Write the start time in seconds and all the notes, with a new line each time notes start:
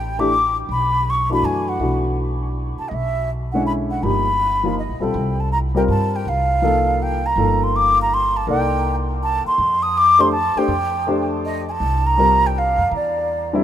Already playing: A1 G5
0.19 E3 A3 D4 G4 D6
0.69 B1 B5
1.10 C#6
1.29 E3 A3 D4 F#4 B5
1.42 F#2 G#5
1.68 F#5
1.79 B1 E3 A3 D4 F#4
2.78 A5, muted upright bass stroke
2.88 B1 D#5
2.94 E5
3.52 D3 G#3 C#4 E4 F#5
3.66 B5
3.90 F#5
4.03 G1 F3 A#3 D#4 G4 B5
4.63 F3 A#3 D#4 F4
4.79 D#5
4.89 A#1
5.00 B1 G3 C4 F4 A4 G5
5.14 C2
5.40 A5
5.52 A#5
5.74 G3 C4 F4 A#4 G5
5.88 G2 A5
6.16 G5
6.25 C2 F5
6.62 F3 A#3 D#4 A4
7.02 G5
7.26 A#5
7.36 G1 F3 A#3 D#4 A4
7.63 C6
7.76 D6
8.02 A#5
8.14 C6
8.36 A5
8.47 C2 A#3 D#4 A4 D5 G5
9.23 A5
9.45 C6, muted upright bass stroke
9.58 F2
9.83 D#6
9.97 D6
10.19 A3 D4 G4 C5 C6
10.32 A5
10.56 A3 D4 G4 C5 G5, muted upright bass stroke
10.68 F2
11.07 A3 D4 G4 C5
11.45 D#5
11.68 G#5 A5
11.80 C2
12.07 A#5
12.18 G3 C4 F4 A#4
12.46 G5
12.58 F5
12.78 F2
12.91 E2
12.96 D5
13.53 D3 G3 C4 E4